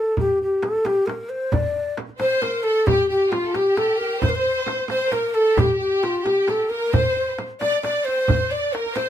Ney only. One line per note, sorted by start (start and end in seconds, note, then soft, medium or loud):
0.00 0.18 A4 medium
0.19 0.39 G4 medium
0.42 0.65 G4 medium
0.64 0.87 A4 medium
0.85 1.08 G4 medium
1.06 1.31 A#4 medium
1.29 1.54 C5 medium
1.53 1.94 D5 medium
2.19 2.43 C5 medium
2.42 2.65 A#4 medium
2.63 2.88 A4 medium
2.87 3.10 G4 medium
3.10 3.33 G4 medium
3.31 3.57 F4 medium
3.55 3.79 G4 medium
3.77 3.99 A4 medium
3.97 4.20 A#4 medium
4.21 4.31 C5 medium
4.29 4.37 A#4 medium
4.35 4.89 C5 medium
4.89 5.14 C5 loud
5.12 5.36 A#4 medium
5.34 5.61 A4 medium
5.59 5.79 G4 medium
5.80 6.05 G4 medium
6.03 6.26 F4 medium
6.24 6.51 G4 medium
6.49 6.71 A4 medium
6.70 6.95 A#4 medium
6.93 7.34 C5 medium
7.61 7.82 D5 medium
7.82 8.07 D5 medium
8.05 8.53 C5 medium
8.51 8.75 D5 medium
8.73 8.97 A#4 medium
8.96 9.09 C5 medium